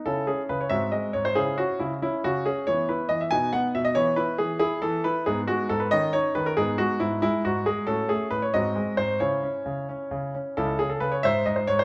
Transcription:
<<
  \new Staff \with { instrumentName = "Grand piano" } { \time 6/8 \key cis \minor \tempo 4. = 92 << { a'8 gis'8 b'16 cis''16 e''8 dis''8 cis''16 bis'16 | gis'8 fis'8 e'8 e'8 fis'8 gis'8 | cis''8 b'8 dis''16 e''16 gis''8 fis''8 e''16 dis''16 | cis''8 b'8 gis'8 gis'8 a'8 b'8 |
gis'8 fis'8 a'16 b'16 dis''8 cis''8 b'16 ais'16 | gis'8 fis'8 e'8 e'8 fis'8 gis'8 | a'8 gis'8 b'16 cis''16 dis''4 bis'8 | cis''2~ cis''8 r8 |
<e' a'>8 gis'16 a'16 b'16 cis''16 <bis' e''>8 dis''16 bis'16 cis''16 bis'16 | } \\ { <cis' e'>4. <bis fis'>4. | <cis' e'>2. | <b e'>4. <b dis'>4. | <b e'>2. |
<b dis'>4. <cis' dis'>4. | <b dis'>2. | <cis' fis'>4. <bis fis'>4. | <cis' e'>2. |
r2. | } >> }
  \new Staff \with { instrumentName = "Grand piano" } { \clef bass \time 6/8 \key cis \minor cis8 cis'8 cis8 gis,8 gis8 gis,8 | cis8 cis'8 cis8 cis'8 cis8 cis'8 | e8 e'8 e8 b,8 b8 b,8 | e8 e'8 e8 e'8 e8 e'8 |
gis,8 gis8 gis,8 dis8 dis'8 dis8 | gis,8 gis8 gis,8 gis8 gis,8 gis8 | a,8 a8 a,8 gis,8 gis8 gis,8 | cis8 cis'8 cis8 cis'8 cis8 cis'8 |
<cis, cis>8 cis8 cis8 gis,8 gis,8 gis,8 | }
>>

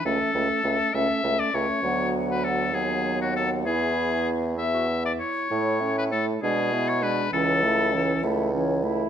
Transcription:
<<
  \new Staff \with { instrumentName = "Flute" } { \time 6/8 \key a \major \tempo 4. = 66 e''8 e''8 e''8 e''8 e''8 e''8 | fis''4. fis''4. | e''4. e''4 r8 | cis''8 e''8 cis''8 d''8 e''8 d''8 |
cis''8 e''8 cis''8 e''8 cis''8 e''8 | }
  \new Staff \with { instrumentName = "Oboe" } { \time 6/8 \key a \major a'4. e''8. d''16 cis''8~ | cis''8. b'16 a'8 gis'8. fis'16 a'8 | gis'4 r8 e''8. d''16 cis''8~ | cis''8. b'16 a'8 gis'8. cis''16 b'8 |
a'4. r4. | }
  \new Staff \with { instrumentName = "Clarinet" } { \time 6/8 \key a \major cis'8 cis'8 cis'8 cis'8 cis'8 cis'8 | b4. b4. | e'4. gis'16 fis'8 e'8. | e'8 a'8 e'8 d'8 e'8 d'8 |
cis'8 e'8 cis'8 e'8 cis'8 e'8 | }
  \new Staff \with { instrumentName = "French horn" } { \time 6/8 \key a \major a8 a8 a8 a8 a8 a8 | fis4. fis4. | b4. b4 r8 | a8 cis'8 a8 gis8 b8 gis8 |
e8 a8 e8 a8 e8 a8 | }
  \new Staff \with { instrumentName = "Bassoon" } { \clef bass \time 6/8 \key a \major cis,8 cis,8 cis,8 cis,8 cis,8 cis,8 | d,4. dis,4. | e,2~ e,8 r8 | a,4. b,4. |
cis,4. cis,4. | }
>>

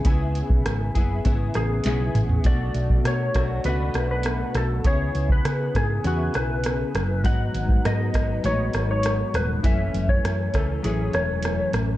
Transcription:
<<
  \new Staff \with { instrumentName = "Electric slide guitar" } { \time 4/4 \key cis \phrygian \tempo 4 = 100 r2 r8 gis'4. | d''4 cis''4 b'8. b'8. a'8 | cis''8. b'8. gis'8 fis'8 b'4. | fis''4 dis''4 cis''8. cis''8. b'8 |
e''8. cis''8. a'8 gis'8 cis''4 r8 | }
  \new Staff \with { instrumentName = "Clean electric guitar" } { \time 4/4 \key cis \phrygian <cis b e' gis'>4. <b e' gis'>8 <cis b e' gis'>4 <cis b e' gis'>4 | <b, a d' fis'>4. <a d' fis'>8 <b, a d' fis'>2 | <cis b e' gis'>2 <cis b e' gis'>2 | <gis, fis b dis'>4 <gis, fis b dis'>8 <fis b dis'>8 <gis, fis b dis'>2 |
<fis, e a cis'>4. <e a cis'>8 <fis, e a cis'>2 | }
  \new Staff \with { instrumentName = "Fretless electric bass" } { \clef bass \time 4/4 \key cis \phrygian cis,8. b,,16 gis,,8 fis,,8 gis,,8 a,,8 b,,8 a,,8 | b,,8 b,,8 b,8 b,,8 cis,8 b,,4 b,,8 | cis,8 cis,8 cis8 gis,8 e,8 b,,4 fis,,8 | gis,,8 gis,,8 gis,8 gis,,8 a,,8 gis,,4 dis,,8 |
fis,,8 fis,,8 fis,8 cis,8 a,,8 e,,4 a,,8 | }
  \new DrumStaff \with { instrumentName = "Drums" } \drummode { \time 4/4 <hh bd>8 hh16 bd16 <hh ss>8 <hh bd>8 <hh bd>8 <hh ss>8 <hh sn>8 <hh toml>16 tomfh16 | <hh bd>8 hh16 bd16 <hh ss>8 <hh bd ss>8 hh8 <hh ss>8 <hh ss>8 <hh ss>8 | <hh bd>8 hh16 bd16 <hh ss>8 <hh bd ss>8 hh8 <hh ss>8 <hh ss>8 <hh ss>8 | <hh bd>8 hh16 bd16 <hh ss>8 <hh bd ss>8 hh8 <hh ss>8 <hh ss>8 <hh ss>8 |
<hh bd>8 hh16 bd16 <hh ss>8 <hh bd ss>8 hh8 <hh ss>8 <hh ss>8 <hh ss>8 | }
>>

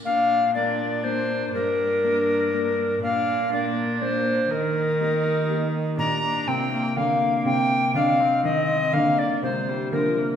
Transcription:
<<
  \new Staff \with { instrumentName = "Recorder" } { \time 3/4 \key bes \mixolydian \tempo 4 = 122 f''4 d''4 c''4 | bes'2. | f''4 d''4 c''4 | bes'2. |
bes''4 g''4 f''4 | g''4 f''4 ees''4 | f''8 d''8 c''4 bes'4 | }
  \new Staff \with { instrumentName = "Viola" } { \time 3/4 \key bes \mixolydian d'4 d'2 | d'2. | d'4 d'2 | ees'2. |
d'8 d'8 c'8 bes8 bes4~ | bes4 d'8 c'4. | bes4 aes8 g8 f8 bes8 | }
  \new Staff \with { instrumentName = "Harp" } { \time 3/4 \key bes \mixolydian << { <bes d' bes'>2.~ | <bes d' bes'>2. | r2. | r2. |
r2. | r2. | r2. | } \\ { r4 <bes d' bes'>4 <bes d' bes'>4~ | <bes d' bes'>4 <bes d' bes'>4 <bes d' bes'>4~ | <bes d' bes'>4 <bes d' bes'>4 <bes d' bes'>4~ | <bes d' bes'>4 <bes ees' g'>4 <bes ees' g'>4~ |
<bes ees' g'>4 <bes d' f'>4 <bes d' f'>4 | r4 <c' ees''>4 <c' ees'>4 | r4 <bes f'>4 <bes f'>4 | } >> }
  \new Staff \with { instrumentName = "Harp" } { \clef bass \time 3/4 \key bes \mixolydian bes,2. | g,2. | bes,2. | ees2. |
bes,4 c4 d4 | c2 ees4 | d4 c4 d4 | }
  \new Staff \with { instrumentName = "Cello" } { \clef bass \time 3/4 \key bes \mixolydian bes,2. | g,2. | bes,2. | ees2. |
bes,4 c4 d4 | c4 d4 ees4 | d4 c4 d4 | }
>>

